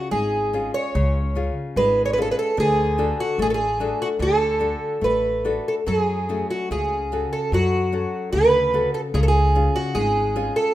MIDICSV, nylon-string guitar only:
0, 0, Header, 1, 2, 480
1, 0, Start_track
1, 0, Key_signature, 3, "minor"
1, 0, Tempo, 819672
1, 558, Time_signature, 2, 2, 24, 8
1, 2947, Tempo, 841515
1, 3907, Tempo, 808625
1, 6296, End_track
2, 0, Start_track
2, 0, Title_t, "Nylon-string guitar"
2, 0, Program_c, 0, 24
2, 0, Note_on_c, 0, 61, 37
2, 0, Note_on_c, 0, 65, 34
2, 0, Note_on_c, 0, 68, 41
2, 67, Note_on_c, 0, 56, 47
2, 216, Note_off_c, 0, 61, 0
2, 217, Note_off_c, 0, 65, 0
2, 218, Note_off_c, 0, 68, 0
2, 313, Note_on_c, 0, 61, 42
2, 316, Note_on_c, 0, 65, 37
2, 318, Note_on_c, 0, 68, 41
2, 542, Note_off_c, 0, 56, 0
2, 557, Note_on_c, 0, 49, 58
2, 703, Note_off_c, 0, 61, 0
2, 704, Note_off_c, 0, 65, 0
2, 705, Note_off_c, 0, 68, 0
2, 793, Note_on_c, 0, 61, 41
2, 797, Note_on_c, 0, 65, 36
2, 799, Note_on_c, 0, 68, 47
2, 1025, Note_off_c, 0, 49, 0
2, 1038, Note_on_c, 0, 56, 57
2, 1178, Note_off_c, 0, 61, 0
2, 1179, Note_off_c, 0, 65, 0
2, 1181, Note_off_c, 0, 68, 0
2, 1274, Note_on_c, 0, 61, 39
2, 1277, Note_on_c, 0, 65, 39
2, 1279, Note_on_c, 0, 68, 45
2, 1464, Note_off_c, 0, 61, 0
2, 1465, Note_off_c, 0, 65, 0
2, 1467, Note_off_c, 0, 68, 0
2, 1498, Note_off_c, 0, 56, 0
2, 1507, Note_on_c, 0, 50, 56
2, 1746, Note_on_c, 0, 62, 43
2, 1748, Note_on_c, 0, 66, 39
2, 1750, Note_on_c, 0, 69, 49
2, 1972, Note_off_c, 0, 50, 0
2, 1986, Note_on_c, 0, 57, 55
2, 2130, Note_off_c, 0, 62, 0
2, 2132, Note_off_c, 0, 66, 0
2, 2132, Note_off_c, 0, 69, 0
2, 2225, Note_on_c, 0, 62, 42
2, 2228, Note_on_c, 0, 66, 42
2, 2231, Note_on_c, 0, 69, 51
2, 2447, Note_off_c, 0, 57, 0
2, 2460, Note_on_c, 0, 50, 60
2, 2603, Note_off_c, 0, 62, 0
2, 2605, Note_off_c, 0, 66, 0
2, 2607, Note_off_c, 0, 69, 0
2, 2692, Note_on_c, 0, 62, 38
2, 2696, Note_on_c, 0, 66, 35
2, 2699, Note_on_c, 0, 69, 44
2, 2929, Note_off_c, 0, 50, 0
2, 2936, Note_on_c, 0, 57, 46
2, 3088, Note_off_c, 0, 62, 0
2, 3090, Note_off_c, 0, 66, 0
2, 3091, Note_off_c, 0, 69, 0
2, 3183, Note_on_c, 0, 62, 37
2, 3185, Note_on_c, 0, 66, 33
2, 3188, Note_on_c, 0, 69, 40
2, 3379, Note_off_c, 0, 62, 0
2, 3380, Note_off_c, 0, 66, 0
2, 3381, Note_off_c, 0, 69, 0
2, 3412, Note_off_c, 0, 57, 0
2, 3422, Note_on_c, 0, 54, 53
2, 3665, Note_on_c, 0, 61, 37
2, 3667, Note_on_c, 0, 57, 41
2, 3669, Note_on_c, 0, 66, 35
2, 3887, Note_off_c, 0, 54, 0
2, 3904, Note_on_c, 0, 49, 51
2, 4047, Note_off_c, 0, 61, 0
2, 4049, Note_off_c, 0, 57, 0
2, 4049, Note_off_c, 0, 66, 0
2, 4147, Note_on_c, 0, 61, 39
2, 4151, Note_on_c, 0, 66, 34
2, 4152, Note_on_c, 0, 69, 45
2, 4373, Note_off_c, 0, 49, 0
2, 4393, Note_on_c, 0, 54, 57
2, 4532, Note_off_c, 0, 61, 0
2, 4533, Note_off_c, 0, 66, 0
2, 4534, Note_off_c, 0, 69, 0
2, 4625, Note_on_c, 0, 61, 43
2, 4628, Note_on_c, 0, 66, 36
2, 4630, Note_on_c, 0, 69, 42
2, 4853, Note_off_c, 0, 54, 0
2, 4868, Note_on_c, 0, 49, 51
2, 5007, Note_off_c, 0, 61, 0
2, 5009, Note_off_c, 0, 66, 0
2, 5011, Note_off_c, 0, 69, 0
2, 5106, Note_on_c, 0, 61, 43
2, 5108, Note_on_c, 0, 66, 41
2, 5111, Note_on_c, 0, 69, 49
2, 5300, Note_off_c, 0, 61, 0
2, 5301, Note_off_c, 0, 66, 0
2, 5302, Note_off_c, 0, 69, 0
2, 5334, Note_off_c, 0, 49, 0
2, 5348, Note_on_c, 0, 49, 59
2, 5591, Note_on_c, 0, 61, 43
2, 5594, Note_on_c, 0, 68, 46
2, 5595, Note_on_c, 0, 65, 40
2, 5815, Note_off_c, 0, 49, 0
2, 5831, Note_on_c, 0, 56, 54
2, 5973, Note_off_c, 0, 61, 0
2, 5974, Note_off_c, 0, 65, 0
2, 5975, Note_off_c, 0, 68, 0
2, 6068, Note_on_c, 0, 61, 47
2, 6069, Note_on_c, 0, 65, 42
2, 6072, Note_on_c, 0, 68, 50
2, 6293, Note_off_c, 0, 56, 0
2, 6296, Note_off_c, 0, 61, 0
2, 6296, Note_off_c, 0, 65, 0
2, 6296, Note_off_c, 0, 68, 0
2, 6296, End_track
0, 0, End_of_file